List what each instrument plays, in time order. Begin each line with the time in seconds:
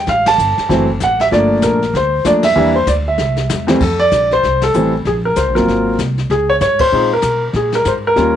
0.07 upright bass A1, grand piano F5, brush sweep, kick, snare
0.26 grand piano A5, snare, ride
0.38 upright bass G1, hi-hat pedal
0.58 muted upright bass stroke, snare
0.69 upright bass F#1, grand piano E3 F#3 A3 C4, brush sweep, kick, snare
1.00 upright bass A1, grand piano F#5, kick, snare, hi-hat pedal
1.20 grand piano E5, snare
1.31 upright bass G1, grand piano F3 A3 A#3 D4 D5, brush sweep, kick, snare
1.62 upright bass A#1, grand piano A#4, kick, snare, hi-hat pedal
1.82 snare
1.94 upright bass D2, grand piano C5, brush sweep, kick, snare
2.25 upright bass F2, grand piano F3 A3 A#3 D4 D5, kick, snare, hi-hat pedal
2.43 grand piano E5, snare, ride
2.56 upright bass E2, grand piano E3 G3 A#3 D4, brush sweep
2.76 grand piano C5
2.87 upright bass D2, grand piano D5, kick, snare, hi-hat pedal
3.08 grand piano E5
3.18 upright bass C2, snare
3.36 snare
3.50 upright bass E2, snare, hi-hat pedal
3.67 grand piano F2 E3 G3 A3 C4, snare
3.80 upright bass F2, grand piano A4, brush sweep, kick, snare, crash
4.00 grand piano D5
4.12 upright bass A#1, kick, snare, hi-hat pedal
4.31 grand piano C5, snare
4.43 upright bass C2, brush sweep, kick, snare
4.62 grand piano A4, snare, ride
4.74 upright bass A1, grand piano E3 G3 A3 C4, hi-hat pedal
5.05 upright bass A#1, grand piano G#4, brush sweep, kick, snare
5.25 grand piano A#4
5.36 upright bass C#2, grand piano C5, kick, snare, hi-hat pedal
5.48 upright bass A#1
5.55 upright bass F#1, grand piano F#3 A#3 C4 F4 A#4, snare
5.67 upright bass G#1, brush sweep, kick, snare
5.99 upright bass C2, kick, snare, hi-hat pedal
6.18 snare
6.30 upright bass C#2, grand piano G#4, brush sweep, kick, snare
6.50 grand piano C#5
6.61 upright bass G#2, grand piano C#5, kick, snare, hi-hat pedal
6.79 grand piano C5, kick, ride
6.91 upright bass A#2, grand piano G#3 C4 D#4 F4, brush sweep
7.13 grand piano A#4
7.22 upright bass B2, kick, snare, hi-hat pedal
7.53 upright bass A#2, grand piano G#4, brush sweep, kick, snare
7.72 grand piano A#4, snare
7.85 upright bass G#2, grand piano C5, kick, snare, hi-hat pedal
8.07 grand piano A#4
8.16 upright bass D#2, grand piano G3 A#3 C#4 F4, brush sweep, kick, snare